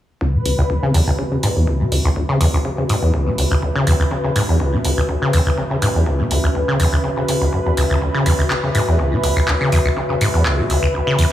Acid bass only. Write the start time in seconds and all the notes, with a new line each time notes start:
0.21 C#2
0.34 C#3
0.46 C#2
0.58 C#2
0.70 D2
0.83 C#3
0.94 E2
1.07 C#2
1.19 C#3
1.31 C#3
1.43 G#2
1.56 E2
1.67 C#2
1.80 C#3
1.92 C#2
2.05 C#2
2.16 D2
2.29 C#3
2.41 E2
2.53 C#2
2.65 C#3
2.78 C#3
2.89 G#2
3.02 E2
3.14 C#2
3.27 C#3
3.38 C#2
3.51 C#2
3.63 D2
3.75 C#3
3.87 E2
4.00 C#2
4.11 C#3
4.24 C#3
4.36 G#2
4.49 E2
4.60 C#2
4.73 C#3
4.85 C#2
4.97 C#2
5.09 D2
5.22 C#3
5.33 E2
5.46 C#2
5.58 C#3
5.71 C#3
5.82 G#2
5.95 E2
6.07 C#2
6.19 C#3
6.31 C#2
6.44 C#2
6.55 D2
6.68 C#3
6.80 E2
6.93 C#2
7.04 C#3
7.17 C#3
7.29 C#3
7.41 C#2
7.53 F#2
7.66 E2
7.77 C#2
7.90 C#2
8.02 D2
8.14 C#3
8.26 E2
8.39 C#2
8.50 C#3
8.63 C#3
8.75 G#2
8.88 E2
8.99 C#2
9.12 C#3
9.23 C#2
9.36 C#2
9.48 D2
9.61 C#3
9.72 E2
9.85 C#2
9.97 C#3
10.10 C#3
10.21 G#2
10.34 E2
10.58 C#3
10.70 C#2
10.83 C#2
10.94 D2
11.07 C#3
11.19 E2